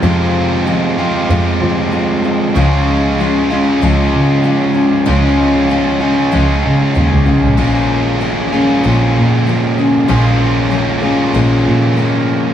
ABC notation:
X:1
M:4/4
L:1/16
Q:1/4=96
K:Dblyd
V:1 name="Overdriven electric guitar" clef=bass
[F,,C,F,A,CF]6 [F,,C,F,A,CF]8- [F,,C,F,A,CF]2 | [D,F,A,DF]6 [D,F,A,DF]8- [D,F,A,DF]2 | [D,F,A,DF]6 [D,F,A,DF]8- [D,F,A,DF]2 | [B,,F,B,DF]6 [B,,F,B,DF]8- [B,,F,B,DF]2 |
[B,,F,B,DF]6 [B,,F,B,DF]8- [B,,F,B,DF]2 |]
V:2 name="Steel-string acoustic guitar" clef=bass
[F,,C,F,A,CF]4 [F,A,CF]2 [F,A,CF]2 [F,,C,F,A,CF]4 [F,A,CF]2 [F,A,CF]2 | [D,F,A,DF]4 [F,A,DF]2 [A,DF]2 [D,F,A,DF]4 [F,A,DF]2 [A,DF]2 | [D,F,A,DF]4 [F,A,DF]2 [A,DF]2 [D,F,A,DF]4 [F,A,DF]2 [A,DF]2 | [B,,F,A,DA]4 [F,A,DA]2 [A,DA]2 [B,,F,A,DA]4 [F,A,DA]2 [A,DA]2 |
[B,,F,A,DA]4 [F,A,DA]2 [A,DA]2 [B,,F,A,DA]4 [F,A,DA]4 |]
V:3 name="Double bass" clef=bass
F,,8 F,,2 F,6 | D,,8 D,,2 D,6 | D,,8 D,,2 D,2 E,, D,, C,, B,,, | B,,,8 B,,,2 B,,6 |
B,,,8 B,,,2 B,,6 |]